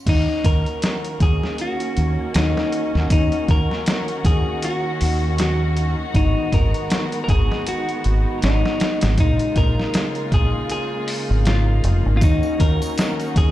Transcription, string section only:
0, 0, Header, 1, 2, 480
1, 0, Start_track
1, 0, Key_signature, -6, "minor"
1, 0, Tempo, 759494
1, 44, Time_signature, 4, 2, 24, 8
1, 8541, End_track
2, 0, Start_track
2, 0, Title_t, "String section"
2, 0, Program_c, 0, 48
2, 38, Note_on_c, 0, 58, 70
2, 38, Note_on_c, 0, 66, 92
2, 39, Note_on_c, 0, 51, 80
2, 40, Note_on_c, 0, 61, 78
2, 3855, Note_off_c, 0, 58, 0
2, 3856, Note_off_c, 0, 61, 0
2, 3895, Note_on_c, 0, 56, 78
2, 3895, Note_on_c, 0, 59, 77
2, 5775, Note_off_c, 0, 66, 0
2, 5776, Note_off_c, 0, 51, 0
2, 5790, Note_off_c, 0, 59, 0
2, 5808, Note_on_c, 0, 49, 80
2, 5808, Note_on_c, 0, 65, 90
2, 5810, Note_on_c, 0, 58, 77
2, 7704, Note_off_c, 0, 56, 0
2, 7706, Note_off_c, 0, 65, 0
2, 7707, Note_off_c, 0, 49, 0
2, 7719, Note_on_c, 0, 61, 76
2, 7720, Note_on_c, 0, 66, 95
2, 7724, Note_on_c, 0, 51, 82
2, 8541, Note_off_c, 0, 51, 0
2, 8541, Note_off_c, 0, 58, 0
2, 8541, Note_off_c, 0, 61, 0
2, 8541, Note_off_c, 0, 66, 0
2, 8541, End_track
0, 0, End_of_file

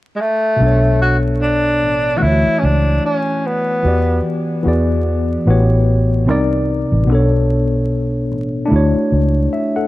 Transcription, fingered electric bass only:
0, 0, Header, 1, 3, 480
1, 0, Start_track
1, 0, Key_signature, 2, "minor"
1, 0, Tempo, 810811
1, 355, Time_signature, 4, 2, 24, 8
1, 5845, End_track
2, 0, Start_track
2, 0, Title_t, "Fingered electric bass"
2, 0, Program_c, 0, 33
2, 358, Note_on_c, 0, 35, 99
2, 1079, Note_off_c, 0, 35, 0
2, 1079, Note_on_c, 0, 33, 70
2, 1284, Note_off_c, 0, 33, 0
2, 1319, Note_on_c, 0, 38, 89
2, 1437, Note_off_c, 0, 38, 0
2, 1560, Note_on_c, 0, 37, 85
2, 1765, Note_off_c, 0, 37, 0
2, 2278, Note_on_c, 0, 40, 103
2, 2483, Note_off_c, 0, 40, 0
2, 2760, Note_on_c, 0, 40, 96
2, 3171, Note_off_c, 0, 40, 0
2, 3239, Note_on_c, 0, 33, 103
2, 3719, Note_off_c, 0, 33, 0
2, 3719, Note_on_c, 0, 36, 91
2, 4044, Note_off_c, 0, 36, 0
2, 4096, Note_on_c, 0, 33, 99
2, 4198, Note_off_c, 0, 33, 0
2, 4198, Note_on_c, 0, 35, 99
2, 4920, Note_off_c, 0, 35, 0
2, 4920, Note_on_c, 0, 33, 84
2, 5124, Note_off_c, 0, 33, 0
2, 5159, Note_on_c, 0, 38, 90
2, 5277, Note_off_c, 0, 38, 0
2, 5400, Note_on_c, 0, 37, 85
2, 5604, Note_off_c, 0, 37, 0
2, 5845, End_track
3, 0, Start_track
3, 0, Title_t, "Muted fingered electric bass strokes"
3, 1459, Note_on_c, 9, 29, 48
3, 1518, Note_off_c, 9, 29, 0
3, 5299, Note_on_c, 9, 29, 49
3, 5358, Note_off_c, 9, 29, 0
3, 5845, End_track
0, 0, End_of_file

